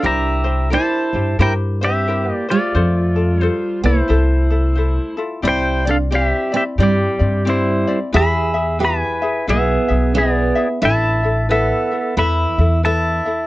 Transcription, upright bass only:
X:1
M:4/4
L:1/8
Q:"Swing" 1/4=89
K:F
V:1 name="Upright bass" clef=bass
C,,3 G,, G,,4 | F,,3 C,, C,,4 | [K:C] C,,4 G,, G,,3 | E,,4 B,,, B,,,3 |
A,,,4 E,, E,,3 |]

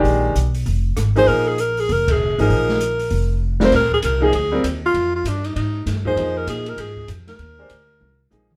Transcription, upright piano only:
X:1
M:4/4
L:1/8
Q:"Swing" 1/4=196
K:Bbmix
V:1 name="Upright piano"
[E,A,DG]2 z4 z [F,B,EA]- | [F,B,EA]2 z4 z [F,B,EA]- | [F,B,EA]2 z4 z [G,CFB] | z3 [F,B,EA] z [G,CFB] z2 |
z6 z [F,B,EA] | [F,B,EA]4- [F,B,EA] z3 | z [A,DGc] z4 [F,B,EA] z |]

